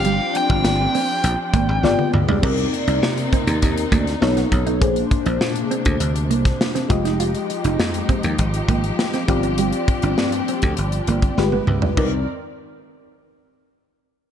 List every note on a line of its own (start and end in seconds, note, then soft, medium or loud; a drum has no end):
0.00 0.18 G1 loud
0.00 2.39 F3 medium
0.00 1.79 C4 medium
0.00 1.82 C4 medium
0.00 1.80 D4 medium
0.00 1.82 D4 medium
0.00 1.80 F4 medium
0.00 1.80 G4 medium
0.00 1.83 D5 medium
0.00 0.36 F5 loud
0.00 2.39 G5 medium
0.05 0.17 G3 medium
0.05 closed hi-hat medium
0.35 2.11 G5 medium
0.35 muted clean electric guitar stroke soft
0.35 closed hi-hat medium
0.50 0.61 G1 loud
0.50 0.62 D4 medium
0.50 kick loud
0.64 0.86 G1 medium
0.64 snare loud
0.64 closed hi-hat loud
0.95 1.06 C4 medium
0.95 open hi-hat medium
1.24 1.35 A#1 loud
1.24 closed hi-hat loud
1.53 1.65 G#1 medium
1.53 1.66 A#3 medium
1.53 kick loud
1.53 closed hi-hat medium
1.69 1.80 G#1 loud
1.83 1.94 G1 loud
1.83 2.43 G#3 medium
1.83 2.43 B3 medium
1.83 2.43 F4 medium
1.83 2.43 G4 medium
1.83 2.44 G#4 medium
1.83 2.43 D5 medium
1.83 snare medium
1.99 2.10 B3 medium
1.99 high tom medium
2.13 2.24 D2 medium
2.13 muted clean electric guitar stroke soft
2.13 mid tom medium
2.28 2.39 C#2 medium
2.28 2.40 D4 medium
2.28 floor tom medium
2.42 2.65 C2 loud
2.42 4.20 C3 medium
2.42 4.20 A#3 medium
2.42 4.18 C4 medium
2.42 4.20 C4 medium
2.42 2.55 C4 medium
2.42 4.18 D#4 medium
2.42 4.79 D#4 medium
2.42 4.19 A#4 medium
2.42 4.19 D5 medium
2.42 kick loud
2.42 crash loud
2.58 closed hi-hat soft
2.73 muted clean electric guitar stroke soft
2.73 closed hi-hat medium
2.87 2.98 C2 medium
2.87 3.00 D#4 medium
2.87 closed hi-hat soft
3.02 3.24 C3 medium
3.02 snare loud
3.18 closed hi-hat soft
3.33 3.44 C4 medium
3.33 kick medium
3.33 closed hi-hat medium
3.47 3.58 D#2 medium
3.47 closed hi-hat medium
3.62 3.84 D#2 medium
3.62 kick medium
3.62 closed hi-hat medium
3.78 closed hi-hat medium
3.92 4.14 D2 medium
3.92 4.04 A#3 medium
3.92 kick medium
3.92 closed hi-hat medium
4.07 snare soft
4.07 closed hi-hat soft
4.21 4.43 B1 loud
4.21 4.81 C#3 medium
4.21 4.81 A3 medium
4.21 4.81 B3 medium
4.21 4.81 D#4 medium
4.21 4.82 A4 medium
4.21 4.82 C#5 medium
4.21 snare loud
4.37 4.48 B3 medium
4.37 snare soft
4.37 closed hi-hat soft
4.52 4.81 B1 medium
4.52 muted clean electric guitar stroke soft
4.52 kick medium
4.52 closed hi-hat medium
4.67 4.78 D#4 medium
4.67 closed hi-hat soft
4.80 5.03 A#1 loud
4.80 6.88 C3 medium
4.80 9.25 G#3 medium
4.80 6.85 A#3 medium
4.80 6.88 A#3 medium
4.80 4.93 A#3 medium
4.80 6.86 D4 medium
4.80 6.88 D4 medium
4.80 6.86 G#4 medium
4.80 6.87 C5 medium
4.80 kick loud
4.80 closed hi-hat medium
4.96 closed hi-hat soft
5.11 muted clean electric guitar stroke soft
5.11 kick loud
5.11 closed hi-hat medium
5.26 5.37 A#1 medium
5.26 5.38 D4 medium
5.26 closed hi-hat soft
5.41 5.62 A#2 loud
5.41 snare loud
5.56 closed hi-hat medium
5.71 5.82 C4 medium
5.71 closed hi-hat medium
5.85 5.97 D2 medium
5.85 kick medium
5.85 closed hi-hat soft
6.00 6.30 D2 medium
6.00 closed hi-hat medium
6.16 closed hi-hat medium
6.30 6.52 C2 medium
6.30 6.42 A#3 medium
6.30 closed hi-hat medium
6.45 kick medium
6.45 snare soft
6.45 closed hi-hat soft
6.61 snare loud
6.75 6.87 C4 medium
6.75 snare soft
6.75 closed hi-hat soft
6.89 7.33 F1 loud
6.89 11.94 F3 medium
6.89 9.24 G#3 medium
6.89 9.27 D#4 medium
6.89 9.24 F4 medium
6.89 9.25 G4 medium
6.89 11.94 G4 medium
6.89 9.25 D#5 medium
6.89 muted clean electric guitar stroke soft
6.89 kick loud
6.89 closed hi-hat medium
7.05 7.17 D#4 medium
7.05 snare soft
7.05 closed hi-hat soft
7.20 7.31 F4 medium
7.20 closed hi-hat medium
7.35 closed hi-hat soft
7.50 muted clean electric guitar stroke soft
7.50 closed hi-hat medium
7.64 7.75 F1 medium
7.64 7.76 D#4 medium
7.64 closed hi-hat soft
7.79 8.01 F2 loud
7.79 snare loud
7.94 closed hi-hat soft
8.09 8.21 C4 medium
8.09 kick medium
8.09 closed hi-hat medium
8.23 8.35 D#2 medium
8.23 closed hi-hat medium
8.39 8.61 G#1 medium
8.39 kick medium
8.39 closed hi-hat medium
8.54 closed hi-hat medium
8.68 8.90 G#1 medium
8.68 8.81 A#3 medium
8.68 kick medium
8.68 closed hi-hat medium
8.84 closed hi-hat soft
8.99 snare loud
9.14 9.25 C4 medium
9.14 snare soft
9.14 closed hi-hat soft
9.28 9.72 G1 medium
9.28 11.33 C4 medium
9.28 11.36 C4 medium
9.28 11.36 D4 medium
9.28 11.33 F4 medium
9.28 11.34 G4 medium
9.28 11.34 D5 medium
9.28 muted clean electric guitar stroke soft
9.28 kick loud
9.28 closed hi-hat medium
9.43 9.55 D4 medium
9.43 closed hi-hat soft
9.58 9.70 G3 medium
9.58 closed hi-hat loud
9.73 closed hi-hat soft
9.88 muted clean electric guitar stroke soft
9.88 kick medium
9.88 closed hi-hat medium
10.02 10.14 G1 loud
10.02 10.15 D4 medium
10.02 closed hi-hat soft
10.18 10.40 G2 medium
10.18 snare loud
10.32 closed hi-hat medium
10.48 10.60 C4 medium
10.48 closed hi-hat medium
10.62 10.74 D2 loud
10.62 kick medium
10.62 closed hi-hat medium
10.77 11.00 G1 medium
10.77 closed hi-hat medium
10.92 closed hi-hat medium
11.07 11.29 G1 medium
11.07 11.20 A#3 medium
11.07 closed hi-hat medium
11.22 kick medium
11.22 closed hi-hat soft
11.37 11.59 G1 loud
11.37 11.97 G#3 medium
11.37 11.97 B3 medium
11.37 11.97 F4 medium
11.37 11.98 G4 medium
11.37 11.98 B4 medium
11.37 snare medium
11.52 11.64 B3 medium
11.52 high tom medium
11.67 11.89 C#2 medium
11.67 muted clean electric guitar stroke soft
11.67 mid tom medium
11.82 11.94 D4 medium
11.82 floor tom medium
11.97 12.25 C2 medium
11.97 12.25 D#3 medium
11.97 12.25 C4 medium
11.97 12.25 D#4 medium
11.97 12.15 D#4 medium
11.97 12.25 A#4 medium
11.97 12.25 D5 medium
11.97 kick loud
11.97 crash medium